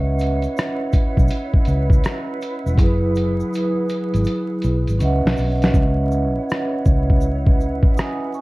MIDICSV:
0, 0, Header, 1, 6, 480
1, 0, Start_track
1, 0, Key_signature, 4, "minor"
1, 0, Tempo, 740741
1, 1803, Time_signature, 4, 2, 24, 8
1, 5451, End_track
2, 0, Start_track
2, 0, Title_t, "Vibraphone"
2, 0, Program_c, 0, 11
2, 0, Note_on_c, 0, 61, 77
2, 0, Note_on_c, 0, 71, 68
2, 0, Note_on_c, 0, 75, 66
2, 0, Note_on_c, 0, 76, 73
2, 0, Note_on_c, 0, 78, 79
2, 17, Control_c, 0, 64, 127
2, 1765, Note_off_c, 0, 61, 0
2, 1772, Note_off_c, 0, 71, 0
2, 1775, Note_on_c, 0, 54, 75
2, 1780, Note_off_c, 0, 75, 0
2, 1788, Note_off_c, 0, 76, 0
2, 1794, Note_on_c, 0, 64, 67
2, 1796, Note_off_c, 0, 78, 0
2, 1812, Control_c, 0, 64, 0
2, 1816, Note_on_c, 0, 68, 66
2, 1837, Note_on_c, 0, 71, 80
2, 1914, Control_c, 0, 64, 127
2, 3203, Note_off_c, 0, 54, 0
2, 3213, Note_off_c, 0, 64, 0
2, 3224, Note_off_c, 0, 68, 0
2, 3234, Note_off_c, 0, 71, 0
2, 3235, Note_on_c, 0, 61, 77
2, 3245, Note_on_c, 0, 71, 71
2, 3250, Control_c, 0, 64, 0
2, 3252, Note_on_c, 0, 75, 69
2, 3260, Note_on_c, 0, 76, 67
2, 3268, Note_on_c, 0, 78, 89
2, 3356, Control_c, 0, 64, 127
2, 3686, Note_off_c, 0, 61, 0
2, 3694, Note_on_c, 0, 61, 75
2, 3703, Note_off_c, 0, 71, 0
2, 3710, Note_on_c, 0, 71, 69
2, 3718, Note_off_c, 0, 75, 0
2, 3725, Note_on_c, 0, 75, 74
2, 3730, Control_c, 0, 64, 0
2, 3732, Note_off_c, 0, 76, 0
2, 3735, Note_off_c, 0, 78, 0
2, 3740, Note_on_c, 0, 76, 72
2, 3757, Note_on_c, 0, 78, 83
2, 3859, Control_c, 0, 64, 127
2, 5154, Note_off_c, 0, 78, 0
2, 5165, Note_on_c, 0, 87, 64
2, 5168, Note_on_c, 0, 80, 53
2, 5392, Note_off_c, 0, 87, 0
2, 5394, Note_off_c, 0, 80, 0
2, 5407, Note_on_c, 0, 85, 68
2, 5412, Note_on_c, 0, 80, 60
2, 5451, Note_off_c, 0, 61, 0
2, 5451, Note_off_c, 0, 71, 0
2, 5451, Note_off_c, 0, 75, 0
2, 5451, Note_off_c, 0, 76, 0
2, 5451, Note_off_c, 0, 80, 0
2, 5451, Note_off_c, 0, 85, 0
2, 5451, End_track
3, 0, Start_track
3, 0, Title_t, "Flute section"
3, 0, Program_c, 1, 73
3, 0, Note_on_c, 1, 64, 73
3, 0, Note_on_c, 1, 71, 71
3, 0, Note_on_c, 1, 73, 67
3, 0, Note_on_c, 1, 78, 81
3, 1784, Note_off_c, 1, 73, 0
3, 1801, Note_on_c, 1, 68, 67
3, 3061, Note_off_c, 1, 78, 0
3, 3228, Note_off_c, 1, 68, 0
3, 3244, Note_on_c, 1, 78, 74
3, 3245, Note_on_c, 1, 73, 62
3, 3553, Note_off_c, 1, 64, 0
3, 3571, Note_off_c, 1, 71, 0
3, 3715, Note_off_c, 1, 73, 0
3, 3715, Note_off_c, 1, 78, 0
3, 3722, Note_on_c, 1, 73, 65
3, 3723, Note_on_c, 1, 78, 79
3, 3724, Note_on_c, 1, 64, 70
3, 3724, Note_on_c, 1, 71, 66
3, 5451, Note_off_c, 1, 64, 0
3, 5451, Note_off_c, 1, 71, 0
3, 5451, Note_off_c, 1, 73, 0
3, 5451, Note_off_c, 1, 78, 0
3, 5451, End_track
4, 0, Start_track
4, 0, Title_t, "Fingered electric bass"
4, 0, Program_c, 2, 33
4, 0, Note_on_c, 2, 37, 109
4, 294, Note_off_c, 2, 37, 0
4, 763, Note_on_c, 2, 35, 88
4, 833, Note_off_c, 2, 35, 0
4, 1087, Note_on_c, 2, 37, 89
4, 1291, Note_off_c, 2, 37, 0
4, 1724, Note_on_c, 2, 28, 82
4, 1802, Note_off_c, 2, 28, 0
4, 1802, Note_on_c, 2, 30, 108
4, 2214, Note_off_c, 2, 30, 0
4, 2684, Note_on_c, 2, 32, 88
4, 2754, Note_off_c, 2, 32, 0
4, 3009, Note_on_c, 2, 35, 85
4, 3140, Note_off_c, 2, 35, 0
4, 3166, Note_on_c, 2, 32, 82
4, 3234, Note_off_c, 2, 32, 0
4, 3247, Note_on_c, 2, 37, 91
4, 3379, Note_off_c, 2, 37, 0
4, 3405, Note_on_c, 2, 35, 83
4, 3474, Note_off_c, 2, 35, 0
4, 3488, Note_on_c, 2, 35, 86
4, 3692, Note_off_c, 2, 35, 0
4, 3722, Note_on_c, 2, 37, 112
4, 4133, Note_off_c, 2, 37, 0
4, 4448, Note_on_c, 2, 37, 83
4, 5056, Note_off_c, 2, 37, 0
4, 5451, End_track
5, 0, Start_track
5, 0, Title_t, "Muted fingered electric bass strokes"
5, 999, Note_on_c, 9, 29, 46
5, 1064, Note_off_c, 9, 29, 0
5, 5451, End_track
6, 0, Start_track
6, 0, Title_t, "Drums"
6, 123, Note_on_c, 9, 82, 55
6, 137, Note_on_c, 9, 42, 60
6, 187, Note_off_c, 9, 82, 0
6, 202, Note_off_c, 9, 42, 0
6, 274, Note_on_c, 9, 42, 32
6, 280, Note_on_c, 9, 82, 51
6, 339, Note_off_c, 9, 42, 0
6, 345, Note_off_c, 9, 82, 0
6, 370, Note_on_c, 9, 82, 66
6, 381, Note_on_c, 9, 37, 108
6, 381, Note_on_c, 9, 42, 80
6, 435, Note_off_c, 9, 82, 0
6, 446, Note_off_c, 9, 37, 0
6, 446, Note_off_c, 9, 42, 0
6, 600, Note_on_c, 9, 82, 49
6, 604, Note_on_c, 9, 36, 92
6, 605, Note_on_c, 9, 42, 67
6, 665, Note_off_c, 9, 82, 0
6, 669, Note_off_c, 9, 36, 0
6, 670, Note_off_c, 9, 42, 0
6, 759, Note_on_c, 9, 36, 85
6, 770, Note_on_c, 9, 82, 44
6, 824, Note_off_c, 9, 36, 0
6, 829, Note_off_c, 9, 82, 0
6, 829, Note_on_c, 9, 82, 72
6, 846, Note_on_c, 9, 42, 89
6, 893, Note_off_c, 9, 82, 0
6, 911, Note_off_c, 9, 42, 0
6, 996, Note_on_c, 9, 36, 93
6, 1061, Note_off_c, 9, 36, 0
6, 1070, Note_on_c, 9, 42, 52
6, 1086, Note_on_c, 9, 82, 44
6, 1135, Note_off_c, 9, 42, 0
6, 1151, Note_off_c, 9, 82, 0
6, 1230, Note_on_c, 9, 36, 102
6, 1249, Note_on_c, 9, 82, 47
6, 1295, Note_off_c, 9, 36, 0
6, 1313, Note_off_c, 9, 82, 0
6, 1320, Note_on_c, 9, 42, 67
6, 1323, Note_on_c, 9, 82, 67
6, 1334, Note_on_c, 9, 37, 110
6, 1385, Note_off_c, 9, 42, 0
6, 1388, Note_off_c, 9, 82, 0
6, 1399, Note_off_c, 9, 37, 0
6, 1564, Note_on_c, 9, 82, 47
6, 1570, Note_on_c, 9, 42, 63
6, 1629, Note_off_c, 9, 82, 0
6, 1635, Note_off_c, 9, 42, 0
6, 1728, Note_on_c, 9, 82, 53
6, 1792, Note_off_c, 9, 82, 0
6, 1799, Note_on_c, 9, 36, 100
6, 1805, Note_on_c, 9, 42, 87
6, 1805, Note_on_c, 9, 82, 68
6, 1863, Note_off_c, 9, 36, 0
6, 1869, Note_off_c, 9, 42, 0
6, 1870, Note_off_c, 9, 82, 0
6, 2045, Note_on_c, 9, 82, 56
6, 2055, Note_on_c, 9, 42, 60
6, 2110, Note_off_c, 9, 82, 0
6, 2119, Note_off_c, 9, 42, 0
6, 2204, Note_on_c, 9, 82, 49
6, 2269, Note_off_c, 9, 82, 0
6, 2292, Note_on_c, 9, 82, 61
6, 2303, Note_on_c, 9, 42, 80
6, 2357, Note_off_c, 9, 82, 0
6, 2368, Note_off_c, 9, 42, 0
6, 2520, Note_on_c, 9, 82, 50
6, 2525, Note_on_c, 9, 42, 68
6, 2585, Note_off_c, 9, 82, 0
6, 2590, Note_off_c, 9, 42, 0
6, 2681, Note_on_c, 9, 42, 35
6, 2690, Note_on_c, 9, 82, 45
6, 2746, Note_off_c, 9, 42, 0
6, 2750, Note_off_c, 9, 82, 0
6, 2750, Note_on_c, 9, 82, 65
6, 2765, Note_on_c, 9, 42, 88
6, 2814, Note_off_c, 9, 82, 0
6, 2830, Note_off_c, 9, 42, 0
6, 2993, Note_on_c, 9, 42, 53
6, 3005, Note_on_c, 9, 82, 43
6, 3057, Note_off_c, 9, 42, 0
6, 3070, Note_off_c, 9, 82, 0
6, 3159, Note_on_c, 9, 42, 33
6, 3168, Note_on_c, 9, 82, 49
6, 3224, Note_off_c, 9, 42, 0
6, 3233, Note_off_c, 9, 82, 0
6, 3242, Note_on_c, 9, 82, 61
6, 3243, Note_on_c, 9, 42, 64
6, 3306, Note_off_c, 9, 82, 0
6, 3308, Note_off_c, 9, 42, 0
6, 3415, Note_on_c, 9, 38, 81
6, 3480, Note_off_c, 9, 38, 0
6, 3480, Note_on_c, 9, 82, 46
6, 3495, Note_on_c, 9, 46, 45
6, 3545, Note_off_c, 9, 82, 0
6, 3559, Note_off_c, 9, 46, 0
6, 3642, Note_on_c, 9, 42, 37
6, 3642, Note_on_c, 9, 82, 49
6, 3654, Note_on_c, 9, 38, 90
6, 3706, Note_off_c, 9, 42, 0
6, 3707, Note_off_c, 9, 82, 0
6, 3718, Note_off_c, 9, 38, 0
6, 3718, Note_on_c, 9, 36, 102
6, 3720, Note_on_c, 9, 82, 63
6, 3783, Note_off_c, 9, 36, 0
6, 3784, Note_off_c, 9, 82, 0
6, 3963, Note_on_c, 9, 82, 52
6, 4028, Note_off_c, 9, 82, 0
6, 4210, Note_on_c, 9, 82, 64
6, 4223, Note_on_c, 9, 37, 110
6, 4274, Note_off_c, 9, 82, 0
6, 4288, Note_off_c, 9, 37, 0
6, 4442, Note_on_c, 9, 82, 52
6, 4444, Note_on_c, 9, 36, 86
6, 4507, Note_off_c, 9, 82, 0
6, 4509, Note_off_c, 9, 36, 0
6, 4600, Note_on_c, 9, 36, 89
6, 4665, Note_off_c, 9, 36, 0
6, 4673, Note_on_c, 9, 82, 71
6, 4738, Note_off_c, 9, 82, 0
6, 4837, Note_on_c, 9, 36, 94
6, 4902, Note_off_c, 9, 36, 0
6, 4928, Note_on_c, 9, 82, 44
6, 4993, Note_off_c, 9, 82, 0
6, 5072, Note_on_c, 9, 36, 99
6, 5136, Note_off_c, 9, 36, 0
6, 5165, Note_on_c, 9, 82, 69
6, 5178, Note_on_c, 9, 37, 116
6, 5230, Note_off_c, 9, 82, 0
6, 5243, Note_off_c, 9, 37, 0
6, 5402, Note_on_c, 9, 82, 47
6, 5451, Note_off_c, 9, 82, 0
6, 5451, End_track
0, 0, End_of_file